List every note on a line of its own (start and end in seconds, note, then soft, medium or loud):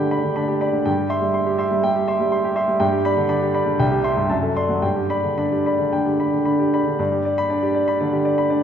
0.00 0.86 G2 soft
0.00 0.23 D3 soft
0.00 0.36 D4 soft
0.00 0.48 G4 soft
0.00 0.11 D5 soft
0.00 0.85 G5 soft
0.00 0.11 B5 medium
0.11 0.22 D5 soft
0.11 0.23 B5 soft
0.23 0.44 D3 soft
0.36 0.57 D4 soft
0.36 0.56 B5 soft
0.48 0.69 G4 soft
0.61 0.72 D5 soft
0.61 0.72 B5 soft
0.73 0.86 D3 soft
0.85 1.80 G2 medium
0.85 1.05 G5 soft
0.98 1.17 G4 soft
1.09 1.21 E5 soft
1.09 1.21 C6 medium
1.21 1.42 G3 soft
1.34 1.54 C6 soft
1.46 1.66 G4 soft
1.58 1.70 E5 soft
1.58 1.70 C6 medium
1.71 1.82 G3 soft
1.83 2.03 G3 soft
1.83 2.03 G5 medium
1.96 2.15 G4 soft
2.08 2.18 E5 soft
2.08 2.19 C6 medium
2.20 2.39 G3 medium
2.32 2.51 C6 medium
2.44 2.64 G4 soft
2.56 2.67 E5 soft
2.56 2.67 C6 medium
2.68 2.80 G3 soft
2.80 3.75 G2 medium
2.80 2.99 G5 medium
2.93 3.12 G4 soft
3.05 3.16 D5 soft
3.05 3.16 B5 medium
3.17 3.36 D3 soft
3.29 3.49 D4 soft
3.29 3.49 B5 medium
3.42 3.62 G4 soft
3.54 3.65 D5 soft
3.54 3.65 B5 medium
3.66 3.79 D3 medium
3.79 4.28 C2 medium
3.79 3.99 G5 medium
3.92 4.11 G4 soft
4.04 4.15 E5 soft
4.04 4.15 C6 medium
4.17 4.29 G2 soft
4.29 4.81 F#2 medium
4.29 4.50 A5 soft
4.43 4.64 A4 soft
4.56 4.68 D5 soft
4.56 4.68 C6 medium
4.69 4.82 F#3 soft
4.82 5.89 G2 soft
4.82 5.04 G5 soft
4.96 5.18 G4 soft
5.09 5.22 D5 soft
5.09 5.22 B5 medium
5.23 5.46 D3 soft
5.38 5.60 D4 soft
5.38 5.60 B5 soft
5.52 5.74 G4 soft
5.66 5.78 D5 soft
5.66 5.78 B5 soft
5.79 5.91 D3 soft
5.93 6.14 D3 soft
5.93 6.14 G5 soft
6.06 6.27 G4 soft
6.20 6.31 D5 soft
6.20 6.32 B5 soft
6.32 6.54 D3 soft
6.45 6.67 D4 soft
6.45 6.67 B5 soft
6.59 6.81 G4 soft
6.73 6.85 D5 soft
6.73 6.85 B5 soft
6.86 6.99 D3 soft
6.99 7.98 G2 medium
6.99 7.20 D5 soft
7.12 7.32 G4 soft
7.25 7.45 D5 soft
7.38 7.58 B5 medium
7.50 7.70 D4 soft
7.50 7.70 D5 soft
7.63 7.83 G4 soft
7.75 7.95 D5 soft
7.88 8.08 B5 soft
8.00 8.21 D3 soft
8.00 8.21 D5 medium
8.13 8.33 G4 soft
8.25 8.45 D5 soft
8.38 8.58 B5 soft
8.50 8.63 D4 soft
8.50 8.63 D5 soft